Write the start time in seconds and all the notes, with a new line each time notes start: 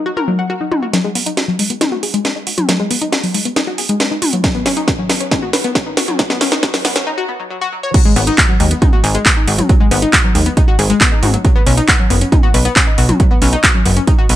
0.06 F#4
0.17 A#4, mid tom
0.28 F#3
0.39 F#5
0.50 F#4
0.61 D#4
0.72 D#4, mid tom
0.83 F#4
0.93 F#3, snare, closed hi-hat
1.04 G#3
1.15 B3, open hi-hat
1.26 D#4, closed hi-hat
1.37 F#4, snare, closed hi-hat
1.48 F#3
1.59 G#3, open hi-hat
1.70 B3, closed hi-hat
1.81 D#4, snare, closed hi-hat, mid tom
1.92 F#4
2.03 G#4, open hi-hat
2.14 G#3, closed hi-hat
2.25 B3, snare, closed hi-hat
2.36 D#4
2.47 F#4, open hi-hat
2.58 F#3, closed hi-hat, mid tom
2.69 F#3, snare, closed hi-hat
2.80 G#3
2.91 B3, open hi-hat
3.02 D#4, closed hi-hat
3.12 F#4, snare, closed hi-hat
3.23 F#3, open hi-hat
3.34 G#3, open hi-hat
3.45 B3, closed hi-hat
3.56 D#4, snare, closed hi-hat
3.67 F#4
3.78 G#4, open hi-hat
3.89 G#3, closed hi-hat
4.00 B3, snare, closed hi-hat
4.11 D#4
4.22 F#4, open hi-hat, mid tom
4.33 F#3, closed hi-hat
4.44 F#3, kick, snare, closed hi-hat
4.55 B3
4.66 C#4, snare, open hi-hat
4.77 D#4, closed hi-hat
4.88 F#4, kick, snare, closed hi-hat
4.99 F#3
5.10 B3, snare, open hi-hat
5.21 C#4, closed hi-hat
5.31 D#4, kick, snare, closed hi-hat, mid tom
5.43 F#4
5.53 B4, snare, open hi-hat
5.64 B3, closed hi-hat
5.75 C#4, kick, snare, closed hi-hat
5.86 D#4
5.97 F#4, snare, open hi-hat
6.08 F#3, closed hi-hat, mid tom
6.19 F#3, kick, snare, closed hi-hat
6.30 B3, snare
6.41 C#4, snare, open hi-hat
6.52 D#4, snare, closed hi-hat
6.63 F#4, kick, snare, closed hi-hat
6.74 F#3, snare, open hi-hat
6.85 B3, snare, open hi-hat
6.96 C#4, snare, closed hi-hat
7.07 D#4
7.18 F#4
7.29 B3
7.40 F#3
7.50 F#3
7.61 F#4
7.72 F#3
7.83 C#5
7.94 F#3, kick, closed hi-hat, crash
8.05 G#3
8.16 G#1 B3, open hi-hat
8.27 D#4, closed hi-hat
8.38 kick, clap, closed hi-hat
8.49 F#3
8.60 D#2 G#3, open hi-hat
8.71 B3, closed hi-hat
8.82 D#4, kick, closed hi-hat, mid tom
8.93 F#4
9.04 G#1 G#4, open hi-hat
9.15 G#3, closed hi-hat
9.26 B3, kick, clap, closed hi-hat
9.37 D#4
9.47 G#1 F#4, open hi-hat
9.58 F#3, closed hi-hat, mid tom
9.69 F#3, kick, closed hi-hat
9.80 G#3
9.91 G#1 B3, open hi-hat
10.02 D#4, closed hi-hat
10.13 F#4, kick, clap, closed hi-hat
10.24 F#3
10.35 D#2 G#3, open hi-hat
10.46 B3, closed hi-hat
10.57 D#4, kick, closed hi-hat
10.68 F#4
10.79 G#1 G#4, open hi-hat
10.90 G#3, closed hi-hat
11.01 B3, kick, clap, closed hi-hat
11.12 D#4
11.23 G#1 F#4, open hi-hat, mid tom
11.34 F#3, closed hi-hat
11.45 F#3, kick, closed hi-hat
11.56 B3
11.66 B1 C#4, open hi-hat
11.77 D#4, closed hi-hat
11.88 F#4, kick, clap, closed hi-hat
11.99 F#3
12.10 F#1 B3, open hi-hat
12.21 C#4, closed hi-hat
12.32 D#4, kick, closed hi-hat, mid tom
12.43 F#4
12.54 B1 B4, open hi-hat
12.65 B3, closed hi-hat
12.76 C#4, kick, clap, closed hi-hat
12.87 D#4
12.98 B1 F#4, open hi-hat
13.09 F#3, closed hi-hat, mid tom
13.20 F#3, kick, closed hi-hat
13.31 B3
13.42 B1 C#4, open hi-hat
13.53 D#4, closed hi-hat
13.64 F#4, kick, clap, closed hi-hat
13.75 F#3
13.86 F#1 B3, open hi-hat
13.97 C#4, closed hi-hat
14.07 D#4, kick, closed hi-hat
14.18 F#4
14.29 B1 B4, open hi-hat